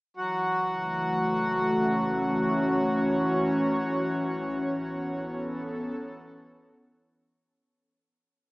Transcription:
0.17 analog synth bass F#1, analog synth pad E3, harmonium F#3 F#4
0.63 analog synth pad F#4
0.81 analog synth pad A3
1.72 analog synth pad C#4
1.78 analog synth pad C#5
3.77 analog synth bass A1
4.82 analog synth pad B3
5.08 analog synth pad A4

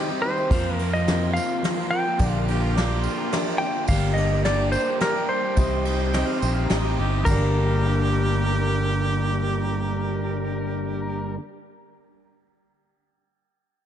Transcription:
Already playing: overdriven electric guitar G3 C4, steel-string acoustic guitar G3 C4 D#4, grand piano D#4 G4 C5 D#5, tonewheel organ C5 G5 D#6
0.00 steel-string acoustic guitar G4
0.10 overdriven electric guitar G3 C4 G4
0.22 overdriven electric guitar D#3 G3, electric slide guitar C5
0.26 overdriven electric guitar C4 G4
0.38 overdriven electric guitar G3 C4 G4, tambourine
0.50 fingered electric bass F2, overdriven electric guitar F2 C3 F3 A#3, grand piano F4 A#4 C5 F5, tonewheel organ A#4 F5 C6, steel-string acoustic guitar A#4, kick, crash, tambourine
0.54 overdriven electric guitar C4 F4
0.76 electric slide guitar A#4, ride
0.80 overdriven electric guitar F3 A#3 C4 F4, tambourine
0.94 overdriven electric guitar A#3 C4 F4, electric slide guitar D#5, tambourine
0.98 overdriven electric guitar F3
1.06 overdriven electric guitar F2 C3 F3 A#3 C4 F4, grand piano F4 A#4 C5 F5, snare, ride, tambourine
1.10 steel-string acoustic guitar A#4
1.34 overdriven electric guitar F3 A#3, steel-string acoustic guitar A#4, electric slide guitar F5, tambourine
1.38 overdriven electric guitar C4 F4
1.51 overdriven electric guitar F3 A#3 C4 F4
1.62 steel-string acoustic guitar F3 C4 F4 A#4, grand piano F4 A#4 C5 F5, snare, ride
1.78 overdriven electric guitar F3 A#3 C4 F4, tambourine
1.91 overdriven electric guitar F3 A#3 C4 F4, electric slide guitar G5
2.06 overdriven electric guitar F3 A#3 C4 F4
2.19 fingered electric bass A#1, overdriven electric guitar A#2 D3 A#3 D4 F4, steel-string acoustic guitar F3 G4, grand piano F4 G4 A#4 D5, tonewheel organ G5 D6, kick, ride, tambourine
2.32 electric slide guitar F5
2.48 overdriven electric guitar D3 A#3 D4 F4, harmonica G4, ride, tambourine
2.61 overdriven electric guitar A#3 D4 F4, harmonica F4, tambourine
2.74 overdriven electric guitar A#2 D3 A#3, steel-string acoustic guitar F3, grand piano F4 G4 A#4 D5, harmonica G4, snare, ride, tambourine
2.79 overdriven electric guitar D4 F4, steel-string acoustic guitar G4
3.03 overdriven electric guitar D3, harmonica F4, tambourine
3.07 overdriven electric guitar A#3 D4 F4
3.20 overdriven electric guitar A#3 D4 F4
3.31 steel-string acoustic guitar F3 A#3, grand piano F4 G4 A#4 D5, snare, ride
3.36 steel-string acoustic guitar D4 G4
3.46 overdriven electric guitar A#3 D4 F4, tambourine
3.58 overdriven electric guitar D3 A#3 D4, steel-string acoustic guitar G4, electric slide guitar G5
3.63 steel-string acoustic guitar F3, overdriven electric guitar F4
3.75 overdriven electric guitar A#3 D4 F4
3.88 fingered electric bass G1, overdriven electric guitar G2 D3 G3, grand piano D4 G4 A#4 D5, electric slide guitar F5, tonewheel organ D6, kick, tambourine, crash
3.92 overdriven electric guitar A#3 D4 G4
4.14 overdriven electric guitar G3, electric slide guitar D#5, ride, tambourine
4.18 overdriven electric guitar A#3 D4 G4
4.30 overdriven electric guitar A#3 D4 G4, tambourine
4.34 overdriven electric guitar G3
4.44 overdriven electric guitar G2 D3 G3 A#3, grand piano D4 G4 A#4 D5, electric slide guitar D5, snare, ride, tambourine
4.48 overdriven electric guitar D4 G4
4.72 overdriven electric guitar G3 A#3 D4, electric slide guitar C5, tambourine
4.76 overdriven electric guitar G4
4.87 overdriven electric guitar G3 A#3 D4 G4
5.00 steel-string acoustic guitar G3 A#3 D4 G4, grand piano D4 G4 A#4 D5, electric slide guitar A#4, snare, ride
5.16 overdriven electric guitar G3 A#3 D4 G4
5.29 overdriven electric guitar G3 A#3 D4, electric slide guitar C5
5.34 overdriven electric guitar G4
5.44 overdriven electric guitar G3 A#3 D4 G4
5.56 fingered electric bass C2, overdriven electric guitar C3 G3, grand piano D#4 G4 C5 D#5, tonewheel organ C5 D#6, kick, ride, tambourine
5.60 overdriven electric guitar C4 D#4 G4
5.85 overdriven electric guitar G3 C4 D#4 G4, ride
5.99 overdriven electric guitar C4 D#4 G4, tambourine
6.12 overdriven electric guitar C3 G3 C4 D#4 G4, grand piano D#4 G4 C5 D#5, harmonica G5, snare, ride, tambourine
6.27 harmonica F5
6.40 fingered electric bass A#1, overdriven electric guitar G3 C4 D#4, harmonica C5, tambourine
6.45 overdriven electric guitar G4
6.55 overdriven electric guitar C4 D#4 G4, harmonica F5
6.69 fingered electric bass A1, steel-string acoustic guitar G3 C4, grand piano D#4 G4 C5 D#5, harmonica A#4, snare, ride, tambourine
6.73 steel-string acoustic guitar D#4 G4
6.84 overdriven electric guitar C4 D#4 G4
6.98 fingered electric bass G1, overdriven electric guitar G3 C4 D#4 G4, harmonica G4
7.11 overdriven electric guitar C4 D#4 G4
7.24 fingered electric bass G1, overdriven electric guitar G2 D3 G3 A#3 D4, grand piano G4 A#4, harmonica G4, electric slide guitar A#4, tonewheel organ A#4, kick, crash, tambourine
7.28 tonewheel organ G3 D4, steel-string acoustic guitar G3, overdriven electric guitar A#4, grand piano D5
7.33 steel-string acoustic guitar A#3 D4
7.39 steel-string acoustic guitar G4

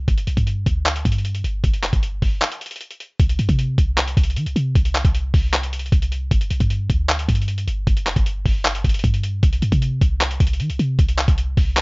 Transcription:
0.08 808-style bass G1, kick, closed hi-hat
0.18 closed hi-hat
0.27 808-style bass B1, closed hi-hat
0.37 808-style bass G2, kick, closed hi-hat
0.47 closed hi-hat
0.66 808-style bass D2, kick, closed hi-hat
0.86 clap, closed hi-hat
0.96 closed hi-hat
1.05 808-style bass G2, kick, closed hi-hat
1.12 closed hi-hat
1.18 closed hi-hat
1.25 closed hi-hat
1.35 closed hi-hat
1.44 808-style bass G1, closed hi-hat
1.64 808-style bass G1, kick, closed hi-hat
1.74 closed hi-hat
1.83 808-style bass F1, clap, closed hi-hat
1.93 808-style bass G1, kick, closed hi-hat
2.03 closed hi-hat
2.22 808-style bass G1, kick, open hi-hat
2.42 clap, closed hi-hat
2.52 closed hi-hat
2.61 closed hi-hat
2.66 closed hi-hat
2.71 closed hi-hat
2.76 closed hi-hat
2.81 closed hi-hat
2.91 closed hi-hat
3.00 closed hi-hat
3.20 808-style bass C2, kick, closed hi-hat
3.29 closed hi-hat
3.39 808-style bass G2, closed hi-hat
3.49 808-style bass C3, kick, closed hi-hat
3.59 closed hi-hat
3.78 808-style bass C2, kick, closed hi-hat
3.98 clap, closed hi-hat
4.08 closed hi-hat
4.17 808-style bass C2, kick, closed hi-hat
4.24 closed hi-hat
4.30 closed hi-hat
4.36 808-style bass D#3, closed hi-hat
4.46 808-style bass C2, closed hi-hat
4.56 808-style bass C3, closed hi-hat
4.75 808-style bass C2, kick, closed hi-hat
4.85 closed hi-hat
4.95 clap, closed hi-hat
5.05 808-style bass C2, kick, closed hi-hat
5.15 closed hi-hat
5.34 808-style bass C2, kick, open hi-hat
5.53 clap, closed hi-hat
5.63 closed hi-hat
5.73 closed hi-hat
5.79 closed hi-hat
5.86 closed hi-hat
5.92 808-style bass C2, kick, closed hi-hat
6.02 closed hi-hat
6.12 closed hi-hat
6.31 808-style bass G1, kick, closed hi-hat
6.41 closed hi-hat
6.50 808-style bass B1, closed hi-hat
6.60 808-style bass G2, kick, closed hi-hat
6.70 closed hi-hat
6.90 808-style bass D2, kick, closed hi-hat
7.09 clap, closed hi-hat
7.19 closed hi-hat
7.29 808-style bass G2, kick, closed hi-hat
7.35 closed hi-hat
7.42 closed hi-hat
7.48 closed hi-hat
7.58 closed hi-hat
7.68 808-style bass G1, closed hi-hat
7.87 808-style bass G1, kick, closed hi-hat
7.97 closed hi-hat
8.06 808-style bass F1, clap, closed hi-hat
8.16 808-style bass G1, kick, closed hi-hat
8.26 closed hi-hat
8.46 808-style bass G1, kick, open hi-hat
8.65 clap, closed hi-hat
8.75 closed hi-hat
8.84 808-style bass G1, kick, closed hi-hat
8.89 closed hi-hat
8.94 closed hi-hat
8.99 closed hi-hat
9.04 808-style bass G2, kick, closed hi-hat
9.14 closed hi-hat
9.23 closed hi-hat
9.43 808-style bass C2, kick, closed hi-hat
9.53 closed hi-hat
9.62 808-style bass G2, closed hi-hat
9.72 808-style bass C3, kick, closed hi-hat
9.82 closed hi-hat
10.01 808-style bass C2, kick, closed hi-hat
10.21 clap, closed hi-hat
10.31 closed hi-hat
10.40 808-style bass C2, kick, closed hi-hat
10.47 closed hi-hat
10.53 closed hi-hat
10.60 808-style bass D#3, closed hi-hat
10.70 808-style bass C2, closed hi-hat
10.79 808-style bass C3, closed hi-hat
10.99 808-style bass C2, kick, closed hi-hat
11.09 closed hi-hat
11.18 clap, closed hi-hat
11.28 808-style bass C2, kick, closed hi-hat
11.38 closed hi-hat
11.57 808-style bass C2, kick, open hi-hat
11.77 clap, closed hi-hat

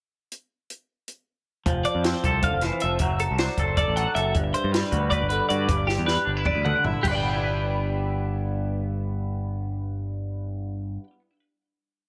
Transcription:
0.32 closed hi-hat
0.70 closed hi-hat
1.08 closed hi-hat
1.66 picked electric bass F1, clean electric guitar F3, kick, closed hi-hat
1.85 clean electric guitar D5, closed hi-hat
1.95 picked electric bass F2
2.04 clean electric guitar C4 C5, snare, closed hi-hat
2.24 picked electric bass C2, clean electric guitar A4, kick, closed hi-hat
2.42 clean electric guitar D3 F5, kick, closed hi-hat
2.53 picked electric bass F1
2.61 clean electric guitar E3 C5, snare, closed hi-hat
2.80 picked electric bass F1, clean electric guitar F3 E5, closed hi-hat
2.99 picked electric bass F#1, clean electric guitar F#3, kick, closed hi-hat
3.19 clean electric guitar A4, closed hi-hat
3.31 picked electric bass C2
3.38 clean electric guitar D4 C5, snare, closed hi-hat
3.57 picked electric bass F#1, clean electric guitar A4, kick, closed hi-hat
3.77 clean electric guitar A4 D5, kick, closed hi-hat
3.88 picked electric bass A1
3.96 clean electric guitar F#3 F#5, closed hi-hat
4.15 picked electric bass F#1, clean electric guitar A4 E5, closed hi-hat
4.35 picked electric bass G1, clean electric guitar G2, kick, closed hi-hat
4.54 clean electric guitar C5, closed hi-hat
4.64 picked electric bass G2
4.72 clean electric guitar G3 B4, snare, closed hi-hat
4.92 picked electric bass D2, clean electric guitar F#4, kick, closed hi-hat
5.10 clean electric guitar B4 D5, kick, closed hi-hat
5.22 picked electric bass G1
5.29 clean electric guitar D3 B4, closed hi-hat
5.49 picked electric bass G2, clean electric guitar F#4 D5, closed hi-hat
5.68 picked electric bass G1, clean electric guitar G2, kick, closed hi-hat
5.87 clean electric guitar G4, snare
5.98 picked electric bass E2
6.06 clean electric guitar G3 B4, snare
6.25 picked electric bass G1, clean electric guitar D4
6.37 clean electric guitar E4
6.45 clean electric guitar B4 D5, kick, mid tom
6.55 picked electric bass D2
6.64 clean electric guitar D3 F#5, mid tom
6.84 picked electric bass G1, clean electric guitar E4 E5, floor tom
7.03 picked electric bass G1, clean electric guitar G2 G4, kick, floor tom, crash
7.08 clean electric guitar B4 D5
7.14 clean electric guitar G3 G5
7.23 clean electric guitar B3
7.34 clean electric guitar E4
7.43 clean electric guitar B4

